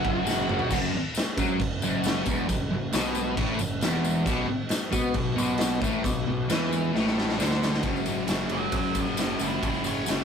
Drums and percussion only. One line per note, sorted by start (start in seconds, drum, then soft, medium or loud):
0.05 kick loud
0.27 snare medium
0.27 tambourine medium
0.49 mid tom loud
0.59 floor tom medium
0.70 kick loud
0.70 crash loud
0.70 tambourine medium
0.70 crash medium
1.15 snare loud
1.15 tambourine medium
1.15 crash medium
1.37 kick loud
1.37 tambourine medium
1.60 kick loud
1.60 crash medium
1.82 tambourine medium
2.04 snare loud
2.04 tambourine medium
2.04 crash medium
2.26 kick loud
2.26 tambourine medium
2.49 kick medium
2.49 tambourine medium
2.49 crash medium
2.93 snare loud
2.93 tambourine loud
2.93 crash medium
3.15 tambourine medium
3.37 kick loud
3.37 crash medium
3.59 tambourine medium
3.81 snare loud
3.81 tambourine loud
3.81 crash medium
4.04 tambourine medium
4.26 kick loud
4.26 tambourine medium
4.26 crash medium
4.69 snare loud
4.69 tambourine loud
4.69 crash medium
4.93 kick loud
4.93 tambourine medium
5.14 kick loud
5.14 crash medium
5.38 tambourine medium
5.58 snare loud
5.58 tambourine loud
5.58 crash medium
5.82 kick loud
5.82 tambourine medium
6.04 kick loud
6.04 tambourine medium
6.04 crash medium
6.49 snare loud
6.49 tambourine loud
6.49 crash medium
6.73 tambourine medium
6.95 snare medium
7.07 snare medium
7.18 snare medium
7.29 snare medium
7.40 snare medium
7.40 tambourine medium
7.51 snare medium
7.63 snare loud
7.63 tambourine medium
7.74 snare medium
7.83 kick loud
7.83 ride medium
7.83 tambourine soft
7.96 tambourine soft
8.06 ride medium
8.06 tambourine medium
8.28 snare loud
8.28 ride medium
8.28 tambourine loud
8.49 ride medium
8.72 kick loud
8.72 ride loud
8.72 tambourine soft
8.84 tambourine soft
8.95 kick loud
8.95 ride medium
8.95 tambourine medium
9.07 tambourine soft
9.17 snare loud
9.17 ride loud
9.17 tambourine loud
9.39 ride medium
9.39 tambourine medium
9.63 kick loud
9.63 ride medium
9.63 tambourine soft
9.74 tambourine soft
9.84 ride medium
9.84 tambourine medium
10.06 snare loud
10.06 ride loud
10.06 tambourine loud